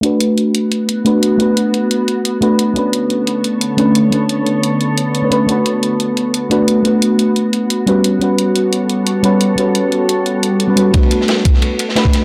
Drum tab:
RD |----------------|----------------|----------------|----------------|
HH |x-x-x-x-x-x-x-x-|x-x-x-x-x-x-x-x-|x-x-x-x-x-x-x-x-|x-x-x-x-x-x-x-x-|
SD |----------------|----------------|----------------|----------------|
BD |----------------|----------------|----------------|----------------|

RD |----------------|----------------|----------------|----------------|
HH |x-x-x-x-x-x-x-x-|x-x-x-x-x-x-x-x-|x-x-x-x-x-x-x-x-|x-x-x-x-x-x-x-x-|
SD |----------------|----------------|----------------|----------------|
BD |----------------|----------------|----------------|----------------|

RD |xxx-x-x-x-x-x-x-|
HH |x-x-x-x-x-x-x-x-|
SD |---ooo-o---oo-o-|
BD |o-----o------o--|